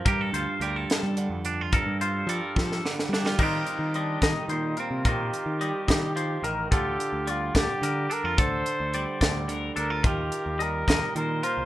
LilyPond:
<<
  \new Staff \with { instrumentName = "Clean electric guitar" } { \time 6/8 \key ees \lydian \tempo 4. = 72 bes'8 c''8 bes'8 a'8 r4 | bes'8 c''8 bes'8 a'8 r4 | bes'4 ees''8 ees''8 c''8 bes'8 | bes'4 ees''8 ees''8 c''8 bes'8 |
a'4 d''8 d''8 bes'8 a'8 | a'4 d''8 d''8 bes'8 a'8 | bes'4 ees''8 ees''8 c''8 bes'8 | }
  \new Staff \with { instrumentName = "Trumpet" } { \time 6/8 \key ees \lydian r2. | r2 r8 g'8 | ees'4 d'8 ees'4 f'8 | g'2~ g'8 bes'8 |
g'4 f'8 g'4 bes'8 | c''2 r8 bes'8 | g'4 bes'4 bes'8 c''8 | }
  \new Staff \with { instrumentName = "Clean electric guitar" } { \time 6/8 \key ees \lydian << { g'16 a'16 f'8 g'16 a'4~ a'16 d'16 f'16 | a'8 f'8 a'4. d'16 f'16 | <g c' f' g'>2~ <g c' f' g'>8 c'8 | f'2. |
f'2~ f'8 d'16 f'16 | a'2~ a'8 d'16 f'16 | f'2~ f'8 f'8 | } \\ { g,4 g4 d4 | g,4 g4 d4 | ees4 g4 bes,4 | ees4 g8 g8 f8 ees8 |
d4 g4 d4 | d4 g4 d4 | ees4 g4 bes,4 | } >> }
  \new Staff \with { instrumentName = "Picked electric bass" } { \clef bass \time 6/8 \key ees \lydian g,8 d,16 r16 d,8 r16 g8 f,8.~ | f,16 g,8. f16 r16 f8 r8 g8 | ees8 r16 ees8. ees16 r16 ees8 r16 c16 | bes,8 r16 ees8 r16 ees4 a,,8 |
d,8 r16 d,8. d,16 r16 d8 r16 f,16 | d,8 r16 d,8 r16 d,4 d,8 | ees,8 r16 ees,8. ees,16 r16 ees8 r16 c,16 | }
  \new DrumStaff \with { instrumentName = "Drums" } \drummode { \time 6/8 <hh bd>8 hh8 hh8 <hh sn>8 hh8 hh8 | <hh bd>8 hh8 hh8 <bd sn>16 sn16 sn16 sn16 sn16 sn16 | <cymc bd>8 hh8 hh8 <hh bd sn>8 hh8 hh8 | <hh bd>8 hh8 hh8 <hh bd sn>8 hh8 hh8 |
<hh bd>8 hh8 hh8 <hh bd sn>8 hh8 hh8 | <hh bd>8 hh8 hh8 <hh bd sn>8 hh8 hh8 | <hh bd>8 hh8 hh8 <hh bd sn>8 hh8 hh8 | }
>>